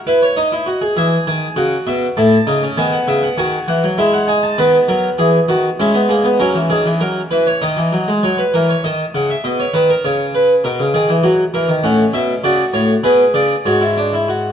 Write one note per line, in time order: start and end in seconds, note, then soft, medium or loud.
0.07 0.25 E4 medium
0.07 0.21 B4 medium
0.22 0.37 C#5 medium
0.37 0.52 D#4 medium
0.37 0.95 D#5 medium
0.52 0.67 E4 medium
0.66 0.81 F#4 medium
0.81 0.95 G#4 medium
0.96 1.16 E3 medium
0.96 1.55 G#4 medium
0.96 1.15 E5 medium
1.27 1.46 D#3 medium
1.27 1.46 G#5 medium
1.56 1.75 C#3 medium
1.56 2.15 F#4 medium
1.56 1.75 F#5 medium
1.87 2.06 B2 medium
1.87 2.05 E5 medium
2.17 2.36 A2 medium
2.17 2.36 E4 medium
2.17 2.76 A5 medium
2.47 2.66 C#3 medium
2.47 2.62 D#4 medium
2.63 2.77 C#4 medium
2.78 2.96 D#3 medium
2.78 3.36 B3 medium
2.78 2.92 G#5 medium
2.92 3.07 F#5 medium
3.08 3.27 C#3 medium
3.08 3.22 E5 medium
3.23 3.38 F#5 medium
3.38 3.57 D#3 medium
3.38 3.97 F#4 medium
3.38 3.57 G#5 medium
3.68 3.83 E3 medium
3.68 3.87 F#5 medium
3.84 3.99 F#3 medium
3.98 4.57 G#3 medium
3.98 4.17 E4 medium
3.98 4.13 E5 medium
4.13 4.28 F#5 medium
4.28 4.47 D#4 medium
4.28 4.43 G#5 medium
4.43 4.58 A5 medium
4.58 4.77 D#3 medium
4.58 5.76 B3 medium
4.58 4.77 B4 medium
4.88 5.08 F#3 medium
4.88 5.08 A#4 medium
5.18 5.38 E3 medium
5.18 5.38 G#4 medium
5.49 5.68 D#3 medium
5.49 5.68 F#4 medium
5.79 6.39 G#3 medium
5.79 5.95 C#4 medium
5.79 5.99 E4 medium
5.94 6.10 B3 medium
6.09 6.25 A#3 medium
6.09 6.28 G#4 medium
6.24 6.40 B3 medium
6.40 6.55 F#3 medium
6.40 7.58 C#4 medium
6.40 6.59 A#4 medium
6.55 6.70 E3 medium
6.70 6.85 D#3 medium
6.70 6.89 G#4 medium
6.86 7.01 E3 medium
7.00 7.20 F#3 medium
7.00 7.20 A#4 medium
7.31 7.50 E3 medium
7.31 7.46 B4 medium
7.47 7.62 C#5 medium
7.62 7.77 D#3 medium
7.62 8.21 D#4 medium
7.62 8.21 D#5 medium
7.77 7.92 E3 medium
7.92 8.07 F#3 medium
8.08 8.23 G#3 medium
8.23 8.42 F#3 medium
8.23 8.38 C#5 medium
8.38 8.53 B4 soft
8.54 8.73 E3 medium
8.54 8.69 A#4 medium
8.69 8.84 C#5 medium
8.84 9.03 D#3 medium
8.84 9.03 D#5 medium
9.15 9.33 C#3 medium
9.15 9.29 F#5 medium
9.30 9.44 E5 medium
9.44 9.63 B2 medium
9.44 9.59 D#5 medium
9.60 9.74 C#5 medium
9.74 9.93 D#3 medium
9.74 9.89 B4 medium
9.90 10.04 A#4 medium
10.05 10.63 C#3 medium
10.05 10.23 C#5 medium
10.35 10.53 B4 medium
10.64 10.79 B2 medium
10.64 10.83 A#4 medium
10.80 10.94 C#3 medium
10.94 11.09 D#3 medium
10.94 11.13 G#4 medium
11.09 11.24 E3 medium
11.24 11.43 F#3 medium
11.24 11.43 F#4 medium
11.54 11.69 E3 medium
11.54 11.73 A#4 medium
11.69 11.84 D#3 medium
11.84 12.03 A2 medium
11.84 12.42 C#4 medium
11.84 12.03 F#5 medium
12.13 12.32 B2 medium
12.13 12.32 E5 medium
12.44 12.62 C#3 medium
12.44 13.03 F#4 medium
12.44 12.63 D5 medium
12.73 12.93 A2 medium
12.73 12.93 C#5 medium
13.04 13.23 B2 medium
13.04 13.64 G#4 medium
13.04 13.23 B4 medium
13.34 13.54 C#3 medium
13.34 13.54 D5 medium
13.66 14.52 G#2 medium
13.66 13.81 F#4 medium
13.66 14.52 C#5 medium
13.81 13.96 E4 medium
13.97 14.12 D4 medium
14.13 14.28 E4 medium
14.28 14.52 F#4 medium